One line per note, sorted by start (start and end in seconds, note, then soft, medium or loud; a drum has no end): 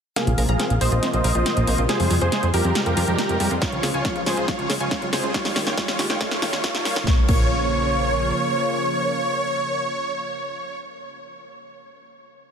0.16 0.32 C3 medium
0.16 0.32 F3 medium
0.16 0.23 A#3 medium
0.16 0.32 A#3 medium
0.16 0.32 F4 medium
0.16 0.43 G#4 medium
0.16 0.43 F5 loud
0.16 snare soft
0.16 closed hi-hat medium
0.16 riser medium
0.27 0.35 A#1 medium
0.27 closed hi-hat soft
0.38 0.46 A#1 loud
0.38 0.53 C3 medium
0.38 0.53 F3 medium
0.38 0.53 A#3 medium
0.38 0.53 F4 medium
0.38 0.42 A#4 loud
0.38 open hi-hat loud
0.49 0.57 A#1 medium
0.49 0.75 G#4 medium
0.49 0.75 F5 loud
0.49 0.56 A#5 loud
0.49 closed hi-hat soft
0.60 0.67 C4 medium
0.60 snare soft
0.60 closed hi-hat medium
0.70 0.78 A#1 medium
0.70 closed hi-hat soft
0.81 0.89 A#1 loud
0.81 0.96 C3 medium
0.81 0.96 F3 medium
0.81 0.96 A#3 medium
0.81 0.96 F4 medium
0.81 1.08 C5 medium
0.81 0.91 C5 loud
0.81 1.08 D#5 medium
0.81 open hi-hat loud
0.92 1.00 A#1 medium
0.92 0.99 F4 medium
0.92 closed hi-hat soft
1.03 1.18 C3 medium
1.03 1.18 F3 medium
1.03 1.18 A#3 medium
1.03 1.10 C4 medium
1.03 1.18 F4 medium
1.03 snare medium
1.03 closed hi-hat loud
1.14 1.22 A#1 medium
1.14 1.80 C5 medium
1.14 1.80 D#5 loud
1.14 closed hi-hat soft
1.24 1.32 A#1 loud
1.24 1.29 A#4 loud
1.24 open hi-hat loud
1.35 1.43 A#1 medium
1.35 1.50 C3 medium
1.35 1.50 F3 medium
1.35 1.50 A#3 medium
1.35 1.45 F4 medium
1.35 1.50 F4 medium
1.35 closed hi-hat soft
1.46 1.53 C4 medium
1.46 snare medium
1.46 closed hi-hat medium
1.57 1.65 A#1 medium
1.57 1.64 C3 medium
1.57 1.64 F3 medium
1.57 1.64 A#3 medium
1.57 1.64 F4 medium
1.57 closed hi-hat soft
1.67 1.76 A#1 loud
1.67 1.83 C3 medium
1.67 1.83 F3 medium
1.67 1.75 A#3 loud
1.67 1.83 A#3 medium
1.67 1.83 F4 medium
1.67 open hi-hat loud
1.78 1.86 A#1 medium
1.78 1.83 F4 medium
1.78 closed hi-hat soft
1.89 2.04 C3 medium
1.89 1.96 G3 medium
1.89 2.04 G3 medium
1.89 2.04 G#3 medium
1.89 2.04 F4 medium
1.89 2.16 G#4 medium
1.89 2.16 C5 loud
1.89 snare medium
1.89 closed hi-hat medium
2.00 2.08 F2 medium
2.00 open hi-hat medium
2.11 2.19 F2 loud
2.11 2.26 C3 medium
2.11 2.26 G3 medium
2.11 2.26 G#3 medium
2.11 2.15 F4 loud
2.11 2.26 F4 medium
2.11 open hi-hat loud
2.21 2.30 F2 medium
2.21 2.48 G#4 medium
2.21 2.28 C5 loud
2.21 2.48 C5 loud
2.21 closed hi-hat soft
2.32 2.39 G#3 medium
2.32 snare medium
2.32 closed hi-hat medium
2.43 2.51 F2 medium
2.43 closed hi-hat soft
2.54 2.62 F2 loud
2.54 2.69 C3 medium
2.54 2.69 G3 medium
2.54 2.69 G#3 medium
2.54 2.69 F4 medium
2.54 2.80 G4 medium
2.54 2.64 G4 loud
2.54 2.80 A#4 loud
2.54 open hi-hat loud
2.65 2.73 F2 medium
2.65 2.72 C4 medium
2.65 closed hi-hat soft
2.75 2.91 C3 medium
2.75 2.91 G3 medium
2.75 2.82 G#3 medium
2.75 2.91 G#3 medium
2.75 2.91 F4 medium
2.75 snare medium
2.75 closed hi-hat medium
2.86 2.94 F2 medium
2.86 3.53 G4 medium
2.86 3.53 A#4 loud
2.86 closed hi-hat soft
2.97 3.05 F2 loud
2.97 3.01 F4 loud
2.97 open hi-hat loud
3.08 3.16 F2 medium
3.08 3.23 C3 medium
3.08 3.23 G3 medium
3.08 3.23 G#3 medium
3.08 3.18 C4 medium
3.08 3.23 F4 medium
3.08 closed hi-hat soft
3.19 3.26 G#3 medium
3.19 snare medium
3.19 closed hi-hat medium
3.29 3.38 F2 medium
3.29 3.37 C3 medium
3.29 3.37 G3 medium
3.29 3.37 G#3 medium
3.29 3.37 F4 medium
3.29 closed hi-hat soft
3.40 3.48 F2 medium
3.40 3.55 C3 medium
3.40 3.55 G3 medium
3.40 3.47 G3 loud
3.40 3.55 G#3 medium
3.40 3.55 F4 medium
3.40 open hi-hat loud
3.51 3.59 F2 medium
3.51 3.55 C4 medium
3.51 closed hi-hat soft
3.62 3.77 C#3 medium
3.62 3.77 F3 medium
3.62 3.69 G#3 medium
3.62 3.77 G#3 medium
3.62 3.88 F4 medium
3.62 3.77 F4 medium
3.62 3.88 C#5 medium
3.62 kick loud
3.62 snare medium
3.62 closed hi-hat medium
3.72 3.81 C#2 medium
3.72 closed hi-hat soft
3.83 3.91 C#2 loud
3.83 3.98 C#3 medium
3.83 3.98 F3 medium
3.83 3.98 G#3 medium
3.83 3.98 F4 medium
3.83 3.88 G#4 loud
3.83 snare medium
3.83 open hi-hat loud
3.94 4.02 C#2 medium
3.94 4.21 F4 medium
3.94 4.21 C#5 medium
3.94 4.01 G#5 loud
3.94 closed hi-hat soft
4.05 4.12 C#4 medium
4.05 kick loud
4.05 snare medium
4.05 closed hi-hat medium
4.16 4.24 C#2 medium
4.16 closed hi-hat soft
4.26 4.35 C#2 loud
4.26 4.42 C#3 medium
4.26 4.42 F3 medium
4.26 4.42 G#3 medium
4.26 4.42 F4 medium
4.26 4.46 G#4 medium
4.26 4.46 C5 medium
4.26 4.37 C#5 loud
4.26 snare medium
4.26 open hi-hat loud
4.37 4.45 C#2 loud
4.37 4.44 F4 medium
4.37 closed hi-hat soft
4.48 4.63 C#3 medium
4.48 4.63 F3 medium
4.48 4.63 G#3 medium
4.48 4.55 G#3 medium
4.48 4.75 F4 medium
4.48 4.63 F4 medium
4.48 4.75 C#5 medium
4.48 kick loud
4.48 snare medium
4.48 closed hi-hat loud
4.59 4.67 C#2 medium
4.59 closed hi-hat soft
4.70 4.78 C#2 loud
4.70 4.74 G#4 loud
4.70 snare medium
4.70 open hi-hat loud
4.80 4.89 C#2 medium
4.80 4.96 C#3 medium
4.80 4.96 F3 medium
4.80 4.96 G#3 medium
4.80 5.07 F4 medium
4.80 4.96 F4 medium
4.80 5.07 C#5 medium
4.80 4.87 G#5 loud
4.80 closed hi-hat soft
4.91 4.98 C#4 medium
4.91 kick loud
4.91 snare medium
4.91 closed hi-hat medium
5.02 5.10 C#2 medium
5.02 5.10 C#3 medium
5.02 5.10 F3 medium
5.02 5.10 G#3 medium
5.02 5.10 F4 medium
5.02 closed hi-hat soft
5.13 5.21 C#2 loud
5.13 5.28 C#3 loud
5.13 5.28 F3 loud
5.13 5.28 G#3 loud
5.13 5.28 F4 medium
5.13 5.33 G#4 medium
5.13 5.33 C5 loud
5.13 5.23 C#5 loud
5.13 snare medium
5.13 open hi-hat loud
5.24 5.32 C#2 medium
5.24 5.31 F4 medium
5.24 closed hi-hat soft
5.34 5.50 D#3 medium
5.34 5.41 G3 medium
5.34 5.50 G3 medium
5.34 5.50 A#3 medium
5.34 5.61 F4 medium
5.34 5.50 F4 medium
5.34 5.61 C#5 loud
5.34 kick loud
5.34 snare medium
5.34 closed hi-hat medium
5.45 5.53 D#2 medium
5.45 snare medium
5.45 open hi-hat medium
5.56 5.64 D#2 loud
5.56 5.71 D#3 medium
5.56 5.71 G3 medium
5.56 5.71 A#3 medium
5.56 5.71 F4 medium
5.56 5.60 G4 loud
5.56 snare medium
5.56 open hi-hat loud
5.67 5.75 D#2 loud
5.67 5.76 F4 medium
5.67 5.76 C#5 loud
5.67 5.74 G5 loud
5.67 snare medium
5.67 closed hi-hat soft
5.77 5.85 G3 medium
5.77 6.04 F4 medium
5.77 6.04 C#5 loud
5.77 kick loud
5.77 snare medium
5.77 closed hi-hat medium
5.88 5.96 D#2 medium
5.88 snare medium
5.88 closed hi-hat soft
5.99 6.07 D#2 loud
5.99 6.14 D#3 medium
5.99 6.14 G3 medium
5.99 6.14 A#3 medium
5.99 6.14 F4 medium
5.99 6.03 G4 loud
5.99 snare loud
5.99 open hi-hat loud
6.10 6.18 D#2 loud
6.10 6.19 F4 medium
6.10 6.19 C#5 loud
6.10 6.17 G5 loud
6.10 snare medium
6.21 6.36 D#3 medium
6.21 6.36 G3 medium
6.21 6.28 G3 medium
6.21 6.36 A#3 medium
6.21 6.41 F4 medium
6.21 6.36 F4 loud
6.21 6.41 C#5 loud
6.21 kick loud
6.21 snare loud
6.21 closed hi-hat medium
6.31 6.40 D#2 medium
6.31 snare medium
6.31 closed hi-hat soft
6.42 6.50 D#2 loud
6.42 6.49 G3 medium
6.42 6.62 F4 medium
6.42 6.62 C#5 loud
6.42 kick medium
6.42 snare loud
6.42 open hi-hat loud
6.53 6.61 D#2 medium
6.53 6.68 D#3 medium
6.53 6.68 G3 medium
6.53 6.68 A#3 medium
6.53 6.68 F4 loud
6.53 snare medium
6.53 closed hi-hat soft
6.64 6.71 G3 medium
6.64 6.84 F4 medium
6.64 6.84 C#5 loud
6.64 kick loud
6.64 snare loud
6.64 closed hi-hat medium
6.75 6.83 D#2 medium
6.75 6.82 D#3 medium
6.75 6.82 G3 medium
6.75 6.82 A#3 medium
6.75 6.82 F4 medium
6.75 snare medium
6.75 closed hi-hat soft
6.85 6.94 D#2 loud
6.85 7.01 D#3 medium
6.85 7.01 G3 medium
6.85 6.93 G3 medium
6.85 7.01 A#3 medium
6.85 7.05 F4 medium
6.85 7.01 F4 loud
6.85 7.05 C#5 loud
6.85 snare loud
6.85 open hi-hat loud
6.96 7.04 D#2 medium
6.96 snare loud
6.96 closed hi-hat soft
7.07 7.19 A#1 loud
7.07 10.57 C#3 medium
7.07 10.57 F3 medium
7.07 7.19 A#3 medium
7.07 10.57 A#3 medium
7.07 10.57 F4 medium
7.07 7.19 C#5 medium
7.07 kick loud
7.07 snare medium
7.29 8.33 A#1 loud
7.29 7.41 A#3 medium
7.29 10.79 C#5 loud
7.29 kick loud
7.29 crash medium